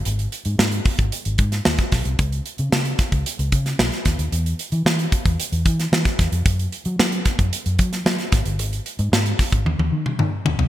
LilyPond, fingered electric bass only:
\new Staff \with { instrumentName = "Fingered electric bass" } { \clef bass \time 4/4 \key b \major \tempo 4 = 112 gis,,8 r16 gis,16 gis,8 r16 gis,,16 r16 gis,,16 gis,8 dis,16 r16 b,,16 bis,,16 | cis,8 r16 cis16 cis8 r16 cis,16 r16 cis,16 cis8 b,,16 r16 dis,16 dis,16 | e,8 r16 e16 e8 r16 e,16 r16 e,16 e8 e16 r16 e,16 eis,16 | fis,8 r16 fis16 fis8 r16 fis,16 r16 fis,16 fis8 fis16 r16 gis,,16 g,,16 |
gis,,8 r16 gis,16 gis,8 r16 gis,,16 ees,16 ees,16 ees8 ees16 r16 ees,16 c,16 | }